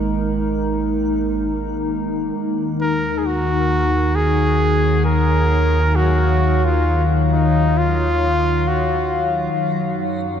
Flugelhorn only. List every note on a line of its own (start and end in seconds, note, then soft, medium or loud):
2.82 3.20 A#4 medium
3.18 3.28 G#4 medium
3.26 4.17 F#4 loud
4.16 5.05 G#4 loud
5.05 5.97 A#4 medium
5.96 6.66 F#4 medium
6.65 7.04 F4 medium
7.33 7.80 D#4 medium
7.78 8.69 F4 medium
8.68 9.33 F#4 medium